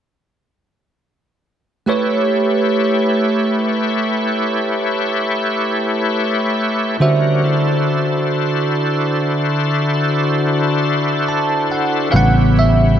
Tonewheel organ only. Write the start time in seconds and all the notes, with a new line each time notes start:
1.87 A3 E4 G4 B4 C#5
7.00 D3 G3 C#4 F#4 A#4
7.43 D3 E4 F#4 A4 C5
12.10 C#4 E4 G4 B4